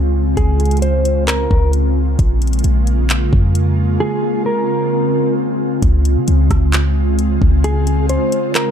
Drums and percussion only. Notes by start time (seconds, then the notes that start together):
0.37 kick, closed hi-hat
0.60 closed hi-hat
0.65 closed hi-hat
0.71 closed hi-hat
0.77 closed hi-hat
0.82 closed hi-hat
1.05 closed hi-hat
1.28 clap, closed hi-hat
1.51 kick
1.73 closed hi-hat
2.19 kick, closed hi-hat
2.42 closed hi-hat
2.47 closed hi-hat
2.53 closed hi-hat
2.59 closed hi-hat
2.64 closed hi-hat
2.87 closed hi-hat
3.10 clap, closed hi-hat
3.33 kick
3.55 closed hi-hat
5.83 kick, closed hi-hat
6.05 closed hi-hat
6.28 closed hi-hat
6.51 kick, cross-stick, closed hi-hat
6.73 clap, closed hi-hat
7.19 closed hi-hat
7.42 kick
7.64 closed hi-hat
7.87 closed hi-hat
8.09 closed hi-hat
8.32 closed hi-hat
8.55 clap, closed hi-hat